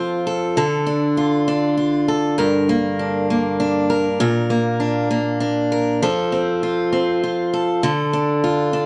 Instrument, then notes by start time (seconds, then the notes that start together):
steel-string acoustic guitar
Already playing: F3 C4 F4 A4
0.27 A4
0.57 D3 A4
0.87 D4
1.17 F4
1.48 D4
1.77 F4
2.08 A4
2.38 G2 A#4
2.69 A#3
2.99 D4
3.30 A#3
3.60 D4
3.90 A#4
4.20 A#2 A#4
4.50 A#3
4.80 D4
5.11 A#3
5.40 D4
5.72 A#4
6.02 F3 A4
6.32 C4
6.63 F4
6.93 C4
7.24 F4
7.54 A4
7.83 D3 A4
8.13 D4
8.44 F4
8.73 D4